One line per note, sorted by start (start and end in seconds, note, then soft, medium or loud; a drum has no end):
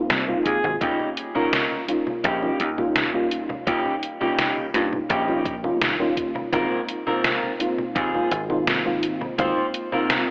0.00 0.23 G#3 medium
0.00 0.23 A#3 medium
0.00 0.24 C4 medium
0.00 0.24 D#4 medium
0.00 0.24 F4 loud
0.10 0.34 C2 medium
0.10 snare loud
0.10 closed hi-hat medium
0.10 high conga soft
0.27 0.77 G#3 medium
0.27 0.77 A#3 medium
0.27 0.77 C4 medium
0.27 0.77 D#4 medium
0.27 0.77 F4 loud
0.27 high conga soft
0.45 0.58 D#2 medium
0.45 0.79 G#4 loud
0.45 kick medium
0.45 closed hi-hat medium
0.64 0.75 G#1 medium
0.64 high conga soft
0.80 0.93 D#2 medium
0.80 1.30 G3 medium
0.80 1.31 A#3 medium
0.80 1.08 C#4 loud
0.80 1.31 C#4 medium
0.80 1.08 D#4 loud
0.80 1.31 D#4 medium
0.80 1.31 F4 medium
0.80 1.08 G4 medium
0.80 kick loud
0.80 closed hi-hat medium
0.80 high conga soft
1.00 high conga soft
1.17 closed hi-hat medium
1.34 1.84 G3 medium
1.34 1.84 A#3 medium
1.34 1.80 C#4 medium
1.34 1.84 C#4 medium
1.34 1.84 D#4 medium
1.34 1.80 D#4 medium
1.34 1.85 F4 medium
1.34 1.80 A#4 medium
1.34 high conga soft
1.53 snare loud
1.53 closed hi-hat medium
1.53 high conga soft
1.71 high conga soft
1.87 2.38 G3 medium
1.87 2.38 A#3 medium
1.87 2.38 C#4 medium
1.87 2.38 D#4 medium
1.87 2.38 F4 medium
1.87 closed hi-hat medium
2.07 high conga medium
2.24 2.48 A#1 medium
2.24 2.69 C#4 medium
2.24 2.69 D#4 medium
2.24 2.69 G4 medium
2.24 kick loud
2.24 closed hi-hat medium
2.24 high conga soft
2.42 2.58 G3 medium
2.42 2.58 A#3 medium
2.42 2.58 C#4 medium
2.42 2.58 D#4 medium
2.42 2.58 F4 medium
2.42 high conga soft
2.60 3.58 D#2 loud
2.60 closed hi-hat medium
2.77 3.09 G3 medium
2.77 3.09 A#3 medium
2.77 3.09 C#4 medium
2.77 3.10 D#4 medium
2.77 3.10 F4 loud
2.77 high conga medium
2.96 snare loud
2.96 closed hi-hat medium
2.96 high conga soft
3.13 3.62 G3 medium
3.13 3.63 A#3 medium
3.13 3.63 C#4 medium
3.13 3.63 D#4 medium
3.13 3.63 F4 loud
3.13 muted clean electric guitar stroke soft
3.13 high conga soft
3.31 closed hi-hat medium
3.49 muted clean electric guitar stroke medium
3.49 high conga soft
3.66 3.79 D#2 loud
3.66 4.16 G3 medium
3.66 4.16 A#3 medium
3.66 3.94 C#4 loud
3.66 4.17 C#4 medium
3.66 3.94 D#4 medium
3.66 4.17 D#4 medium
3.66 4.17 F4 medium
3.66 3.94 G4 loud
3.66 kick loud
3.66 closed hi-hat medium
3.66 high conga soft
3.85 high conga soft
4.03 closed hi-hat medium
4.20 4.70 G3 medium
4.20 4.70 A#3 medium
4.20 4.65 C#4 medium
4.20 4.70 C#4 medium
4.20 4.70 D#4 medium
4.20 4.65 D#4 medium
4.20 4.70 F4 medium
4.20 4.66 G4 medium
4.20 high conga medium
4.39 snare loud
4.39 closed hi-hat medium
4.39 high conga soft
4.57 high conga soft
4.73 4.98 G2 medium
4.73 5.23 G3 medium
4.73 5.24 A#3 medium
4.73 5.24 C#4 medium
4.73 5.24 D#4 medium
4.73 5.24 F4 medium
4.73 snare soft
4.73 closed hi-hat medium
4.93 high conga medium
5.09 5.81 A#1 medium
5.09 5.55 C#4 medium
5.09 5.55 D#4 medium
5.09 5.55 G4 loud
5.09 kick loud
5.09 closed hi-hat medium
5.09 high conga soft
5.27 5.43 G3 medium
5.27 5.44 A#3 medium
5.27 5.44 C#4 medium
5.27 5.44 D#4 medium
5.27 5.44 F4 medium
5.27 high conga soft
5.46 kick loud
5.46 closed hi-hat medium
5.63 5.95 G3 medium
5.63 5.95 A#3 medium
5.63 5.95 C#4 medium
5.63 5.95 D#4 medium
5.63 5.96 F4 loud
5.63 high conga medium
5.81 6.43 D#2 medium
5.81 snare loud
5.81 closed hi-hat medium
5.81 high conga soft
5.99 6.48 G3 medium
5.99 6.48 A#3 medium
5.99 6.49 C#4 medium
5.99 6.49 D#4 medium
5.99 6.49 F4 loud
5.99 muted clean electric guitar stroke soft
5.99 high conga soft
6.17 kick medium
6.17 closed hi-hat medium
6.35 muted clean electric guitar stroke medium
6.35 high conga medium
6.52 6.65 G#1 loud
6.52 7.02 G#3 medium
6.52 7.02 A#3 medium
6.52 6.80 C4 loud
6.52 7.02 C4 medium
6.52 7.03 D#4 medium
6.52 6.80 F4 medium
6.52 7.03 F4 medium
6.52 6.80 A#4 loud
6.52 kick loud
6.52 closed hi-hat medium
6.52 high conga soft
6.71 high conga soft
6.89 closed hi-hat medium
7.06 7.55 G#3 medium
7.06 7.55 A#3 medium
7.06 7.56 C4 medium
7.06 7.51 C4 medium
7.06 7.56 D#4 medium
7.06 7.56 F4 medium
7.06 7.51 F4 medium
7.06 7.52 A#4 medium
7.06 high conga medium
7.24 snare loud
7.24 closed hi-hat medium
7.24 high conga soft
7.43 high conga soft
7.59 8.09 G#3 medium
7.59 8.09 A#3 medium
7.59 8.09 C4 medium
7.59 8.10 D#4 medium
7.59 8.10 F4 loud
7.59 closed hi-hat medium
7.78 high conga medium
7.95 8.19 D#2 medium
7.95 8.40 C4 medium
7.95 8.40 F4 medium
7.95 8.41 G#4 medium
7.95 kick loud
7.95 closed hi-hat medium
7.95 high conga soft
8.13 8.29 G#3 medium
8.13 8.29 A#3 medium
8.13 8.30 C4 medium
8.13 8.30 D#4 medium
8.13 8.30 F4 medium
8.13 high conga soft
8.31 9.29 G#1 loud
8.31 closed hi-hat medium
8.49 8.81 G#3 medium
8.49 8.81 A#3 medium
8.49 8.81 C4 medium
8.49 8.81 D#4 medium
8.49 8.81 F4 loud
8.49 high conga medium
8.67 snare loud
8.67 closed hi-hat medium
8.67 high conga soft
8.85 9.34 G#3 medium
8.85 9.34 A#3 medium
8.85 9.34 C4 medium
8.85 9.34 D#4 medium
8.85 9.35 F4 loud
8.85 muted clean electric guitar stroke soft
8.85 high conga soft
9.03 closed hi-hat medium
9.21 muted clean electric guitar stroke medium
9.21 high conga medium
9.38 9.51 G#1 loud
9.38 9.88 G#3 medium
9.38 9.88 A#3 medium
9.38 9.65 C4 loud
9.38 9.88 C4 medium
9.38 9.88 D#4 medium
9.38 9.66 F4 medium
9.38 9.88 F4 medium
9.38 9.66 C5 loud
9.38 kick loud
9.38 closed hi-hat medium
9.38 high conga soft
9.57 high conga soft
9.74 closed hi-hat medium
9.92 10.30 G#3 medium
9.92 10.30 A#3 medium
9.92 10.30 C4 medium
9.92 10.30 D#4 medium
9.92 10.30 F4 medium
9.92 10.30 A#4 loud
9.92 high conga medium
10.10 snare loud
10.10 closed hi-hat medium
10.10 high conga soft